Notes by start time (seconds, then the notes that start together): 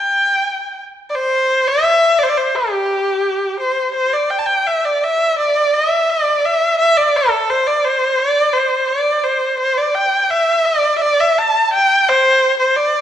Already playing: G5
1.10 D5
1.15 C5
1.67 E5
2.18 D5
2.23 C5
2.29 D5
2.37 C5
2.55 G4
3.60 C5
3.94 C5
4.13 D5
4.30 G5
4.39 A5
4.45 G5
4.66 E5
4.85 D5
5.03 E5
5.39 D5
5.74 E5
6.10 D5
6.45 E5
6.79 E5
6.97 D5
7.16 A4
7.50 C5
7.67 D5
7.85 C5
8.19 D5
8.53 C5
8.88 D5
9.24 C5
9.59 C5
9.78 D5
9.95 G5
10.23 G5
10.30 E5
10.65 D5
10.97 E5
11.02 D5
11.20 E5
11.38 A5
11.73 G5
12.08 C5
12.59 C5
12.76 D5